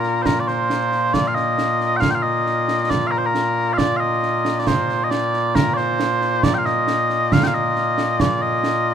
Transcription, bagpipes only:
0.00 8.94 A#2 medium
0.00 8.94 A#3 medium
0.00 8.94 F4 medium
0.00 0.22 A#4 medium
0.22 0.40 A#4 medium
0.22 0.26 C5 medium
0.40 0.48 D5 medium
0.48 1.14 C5 loud
1.14 1.28 D5 loud
1.28 1.35 F5 medium
1.35 1.97 D#5 loud
1.97 2.11 F5 loud
1.97 2.00 G5 loud
2.11 2.15 G5 medium
2.15 2.23 F5 medium
2.23 2.90 D#5 loud
2.90 3.07 D5 loud
3.07 3.18 A#4 medium
3.07 3.11 F5 medium
3.18 3.26 C5 medium
3.26 3.73 A#4 medium
3.73 3.78 F5 loud
3.78 3.97 D5 loud
3.97 4.59 D#5 medium
3.97 4.00 F5 medium
4.59 4.67 D5 medium
4.67 5.04 C5 loud
5.04 5.11 D#5 medium
5.11 5.55 D5 loud
5.55 5.74 A#4 medium
5.74 6.43 C5 loud
5.74 5.77 D5 loud
6.43 6.54 D5 loud
6.54 6.58 G5 medium
6.58 6.66 F5 medium
6.66 7.33 D#5 loud
7.33 7.44 F5 loud
7.44 7.54 F5 medium
7.44 7.47 G5 medium
7.54 8.20 D#5 loud
8.20 8.42 D5 medium
8.42 8.94 D#5 loud

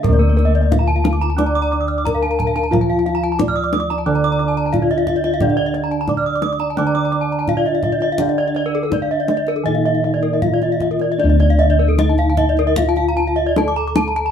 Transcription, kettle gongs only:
0.00 0.66 D3 medium
0.00 2.00 A#4 medium
0.09 4.04 D2 loud
0.72 0.80 D#4 medium
2.05 2.13 D#4 soft
2.71 4.68 F4 medium
3.39 3.47 D#4 soft
4.06 6.03 D3 medium
4.74 4.82 D#4 soft
5.41 7.43 D4 medium
6.08 6.16 D#4 medium
6.77 8.88 D3 medium
7.47 7.55 D#4 soft
8.19 10.39 D4 medium
8.90 8.98 D#4 medium
9.66 11.95 A#2 medium
10.42 10.50 D#4 soft
11.18 13.52 D4 medium
11.24 14.31 D2 loud
11.97 12.05 D#4 medium
13.56 13.64 D#4 soft

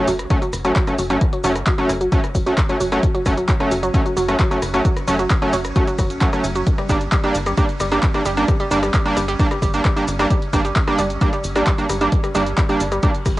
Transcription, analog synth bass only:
0.08 0.26 F#1 medium
0.53 0.72 F#1 medium
0.99 1.17 F#1 loud
1.44 1.63 F#1 loud
1.89 2.08 F#1 medium
2.35 2.54 F#1 medium
2.80 2.99 F#1 loud
3.26 3.45 F#1 loud
3.71 3.90 F#1 medium
4.17 4.35 F#1 medium
4.62 4.81 F#1 loud
5.08 5.26 F#1 loud
5.53 5.72 F#1 medium
5.99 6.17 F#1 medium
6.44 6.63 F#1 loud
6.89 7.08 G1 loud
7.35 7.54 G1 medium
7.80 7.99 G1 medium
8.26 8.44 G1 loud
8.71 8.90 G1 loud
9.17 9.35 G1 medium
9.62 9.81 G1 medium
10.08 10.26 G1 loud
10.53 10.72 G1 loud
10.99 11.17 G1 medium
11.44 11.63 G1 medium
11.90 12.08 G1 loud
12.35 12.54 G1 loud
12.80 12.99 G1 medium
13.26 13.40 G1 medium

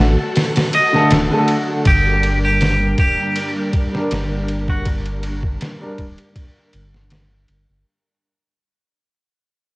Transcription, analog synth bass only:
0.00 0.16 A1 loud
1.11 1.28 D1 medium
1.86 2.95 G1 medium
2.98 3.16 D1 medium
4.11 5.57 G1 medium
5.98 6.16 D1 medium
6.74 7.45 G1 medium
7.49 7.66 G1 medium
7.69 7.84 G1 medium

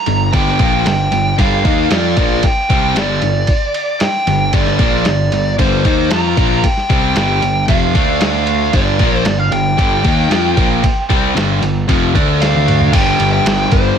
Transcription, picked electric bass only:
0.07 0.31 G1 medium
0.33 0.57 G1 medium
0.59 0.84 A#1 medium
0.86 1.10 G1 medium
1.12 1.36 G1 medium
1.39 1.63 G1 medium
1.65 1.89 D#2 medium
1.90 2.15 F2 medium
2.17 2.41 A#1 medium
2.43 muted picked electric bass stroke soft
2.70 2.94 C2 medium
2.95 3.20 G1 medium
3.22 3.46 G1 medium
4.01 muted picked electric bass stroke soft
4.27 4.51 G1 medium
4.53 4.77 G1 medium
4.79 5.04 A#1 medium
5.06 5.30 G1 medium
5.33 5.57 G1 medium
5.59 5.83 G1 medium
5.85 6.09 D#2 loud
6.11 6.35 F2 medium
6.37 6.62 A#1 medium
6.64 muted picked electric bass stroke soft
6.90 7.14 C2 medium
7.15 7.40 G1 medium
7.42 7.66 G1 medium
7.69 7.93 F1 medium
7.95 8.70 D2 loud
8.74 8.98 G1 medium
9.00 9.24 A#1 loud
9.25 9.50 G1 medium
9.51 9.76 G1 medium
9.78 10.03 G1 medium
10.05 10.29 D#2 medium
10.30 10.55 F2 medium
10.57 10.81 A#1 medium
10.83 muted picked electric bass stroke soft
11.10 11.34 C2 medium
11.35 11.60 G1 medium
11.62 11.86 G1 medium
11.88 12.13 F1 medium
12.15 12.89 D2 loud
12.93 13.12 G1 medium
13.20 13.39 G1 medium
13.46 13.65 G1 medium
13.72 13.91 G1 medium

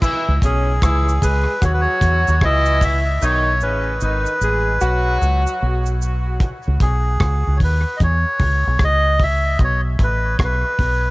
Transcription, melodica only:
0.45 1.25 G#4 medium
1.24 1.64 B4 medium
1.64 1.72 C#5 medium
1.74 1.81 B4 medium
1.81 2.44 C#5 loud
2.45 2.84 D#5 loud
2.85 3.24 E5 loud
3.23 3.63 C#5 loud
3.63 4.02 B4 medium
4.03 5.18 B4 medium
6.82 7.58 G#4 medium
7.57 7.61 C#5 medium
7.64 7.98 B4 medium
7.97 8.01 D#5 medium
8.03 8.84 C#5 medium
8.84 9.23 D#5 loud
9.23 9.59 E5 loud
9.64 9.81 C#5 loud
10.04 10.37 B4 loud
10.38 10.41 C#5 medium
10.44 11.11 B4 medium

